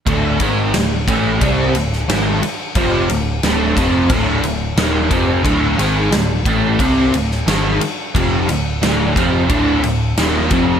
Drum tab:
RD |x-x-x-x-x-x-x-x-|x-x-x-x-x-x-x-x-|x-x-x-x-x-x-x-x-|x-x-x-x-x-x-x-x-|
SD |----o------oo---|----o-------o---|----o------oo---|----o-------o---|
BD |o-o---o-o-------|o-----o-o-----o-|o-----o-o-------|o-----o-o-----o-|